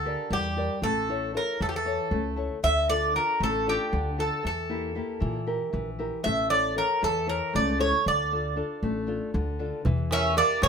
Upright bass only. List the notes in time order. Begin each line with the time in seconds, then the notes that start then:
Already playing: D2
0.30 E2
0.82 A1
1.61 E2
2.11 C#2
2.63 D2
3.40 A1
3.93 D2
4.45 E2
5.22 A#2
5.73 A#1
6.26 A1
7.03 E2
7.55 C#2
8.06 D2
8.83 A1
9.34 D2
9.86 E2
10.63 A#2